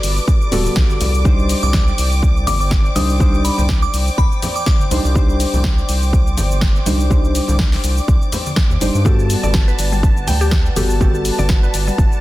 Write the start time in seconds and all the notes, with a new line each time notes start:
Already playing: G3 B3 F#4 A4 B4 D5 D6
0.03 G1, open hi-hat, cabasa
0.17 cabasa
0.28 kick, cabasa
0.41 cabasa
0.51 D1 G3 B3 F#4 A4, open hi-hat, low conga, cabasa
0.66 high conga, cabasa
0.76 B1, kick, snare, cabasa
0.90 high conga, cabasa
1.01 C2, open hi-hat, low conga, cabasa
1.14 cabasa
1.24 G3 D4 D#4 C5 G5, kick, high conga, cabasa
1.39 cabasa
1.49 open hi-hat, cabasa
1.63 C2 D6, low conga, cabasa
1.73 kick, snare, cabasa
1.88 cabasa
1.98 C2, open hi-hat, cabasa
2.12 cabasa
2.23 kick, cabasa
2.36 cabasa
2.47 G1 D6, open hi-hat, low conga, cabasa
2.61 D6, cabasa
2.71 kick, snare, cabasa
2.85 cabasa
2.95 C2 G3 D4 D#4 C5 D#6, open hi-hat, high conga, low conga, cabasa
3.10 cabasa
3.19 G3 D4 D#4 C5, kick, high conga, cabasa
3.34 cabasa
3.45 B5, open hi-hat, cabasa
3.58 C2, high conga, low conga, cabasa
3.69 kick, snare, cabasa
3.82 D6, cabasa
3.94 C2, open hi-hat, cabasa
4.07 cabasa
4.18 C2 B5, kick, cabasa
4.32 cabasa
4.42 open hi-hat, low conga, cabasa
4.56 D6, cabasa
4.66 D6, kick, snare, cabasa
4.79 high conga, cabasa
4.91 C2 G3 D4 D#4 C5, open hi-hat, low conga, cabasa
5.04 C2, cabasa
5.15 G3 D4 D#4 C5, kick, high conga, cabasa
5.29 cabasa
5.40 open hi-hat, cabasa
5.53 C2, low conga, cabasa
5.64 kick, snare, cabasa
5.78 cabasa
5.89 C2, open hi-hat, cabasa
6.02 cabasa
6.13 kick, cabasa
6.27 cabasa
6.37 G1, open hi-hat, low conga, cabasa
6.51 cabasa
6.61 kick, snare, cabasa
6.76 cabasa
6.86 C2 G3 D4 D#4 C5, open hi-hat, high conga, low conga, cabasa
7.00 cabasa
7.10 G3 D4 D#4 C5, kick, high conga, cabasa
7.24 cabasa
7.35 open hi-hat, cabasa
7.48 C2, high conga, low conga, cabasa
7.59 kick, snare, cabasa
7.72 snare, open hi-hat, cabasa
7.84 C2, open hi-hat, cabasa
7.97 cabasa
8.08 C2, kick, cabasa
8.22 cabasa
8.32 open hi-hat, low conga, cabasa
8.46 high conga, cabasa
8.56 kick, snare, cabasa
8.70 D#2, high conga, cabasa
8.81 G1 G3 D4 D#4 C5, open hi-hat, low conga, cabasa
8.95 G2, cabasa
9.05 G3 B3 F#4 G4 A4 B4 D5 F#5 A5, kick, high conga, cabasa
9.19 cabasa
9.30 open hi-hat, cabasa
9.43 G1 D5, low conga, cabasa
9.54 kick, snare, cabasa
9.68 B4, cabasa
9.79 G1, open hi-hat, cabasa
9.92 G3, cabasa
10.03 kick, cabasa
10.17 cabasa
10.27 D2 G5, open hi-hat, low conga, cabasa
10.41 G4, cabasa
10.51 G4, kick, snare, cabasa
10.66 cabasa
10.76 G1 G3 B3 F#4 G4 A4, open hi-hat, high conga, low conga, cabasa
10.90 cabasa
11.00 G3 B3 F#4 G4 A4, kick, high conga, cabasa
11.14 cabasa
11.25 open hi-hat, cabasa
11.38 G1 D5, high conga, low conga, cabasa
11.49 kick, snare, cabasa
11.63 B4, cabasa
11.74 G1, open hi-hat, cabasa
11.87 G3, cabasa
11.98 G1, kick, cabasa
12.12 cabasa